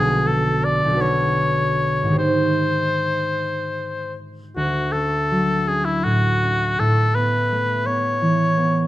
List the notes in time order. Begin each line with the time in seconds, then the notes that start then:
Already playing: B1 D3 C#4 F#4 G#4 B4
0.27 A4
0.65 D5
0.84 B1 D3
0.90 C#4 F#4
0.97 B4
1.02 C#5
2.02 G#2 D#3
2.09 D#4 G4
2.14 C5
2.19 C5
4.56 D2 F#4
4.92 C#4 A4
5.31 F#3
5.67 C#4 G#4
5.85 E4
6.04 A2 F#4
6.43 C#4
6.79 A2 A4
7.15 B3 B4
7.52 A3
7.86 B3 C#5
8.22 E3
8.57 B3